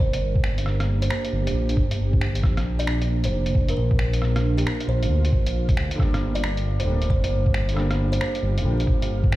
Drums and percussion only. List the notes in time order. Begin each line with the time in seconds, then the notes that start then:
0.13 closed hi-hat
0.35 kick
0.44 finger snap
0.58 closed hi-hat
0.66 cross-stick
0.80 cross-stick, closed hi-hat
1.02 closed hi-hat
1.10 finger snap
1.25 closed hi-hat
1.47 closed hi-hat
1.69 closed hi-hat
1.77 kick
1.91 closed hi-hat
2.13 kick
2.21 finger snap
2.35 closed hi-hat
2.43 kick, cross-stick
2.57 cross-stick, closed hi-hat
2.80 closed hi-hat
2.87 finger snap
3.02 closed hi-hat
3.24 closed hi-hat
3.46 closed hi-hat
3.55 kick
3.68 closed hi-hat
3.91 kick
3.99 finger snap
4.13 closed hi-hat
4.22 cross-stick
4.36 cross-stick, closed hi-hat
4.58 closed hi-hat
4.67 finger snap
4.80 closed hi-hat
5.03 closed hi-hat
5.25 closed hi-hat
5.32 kick
5.46 closed hi-hat
5.69 kick, closed hi-hat
5.77 finger snap
5.91 closed hi-hat
5.99 kick, cross-stick
6.14 cross-stick, closed hi-hat
6.35 closed hi-hat
6.44 finger snap
6.57 closed hi-hat
6.80 closed hi-hat
7.02 closed hi-hat
7.10 kick
7.24 closed hi-hat
7.46 kick
7.54 finger snap
7.69 closed hi-hat
7.77 cross-stick
7.91 cross-stick, closed hi-hat
8.13 closed hi-hat
8.21 finger snap
8.35 closed hi-hat
8.58 closed hi-hat
8.80 closed hi-hat
8.87 kick
9.02 closed hi-hat
9.24 kick
9.32 finger snap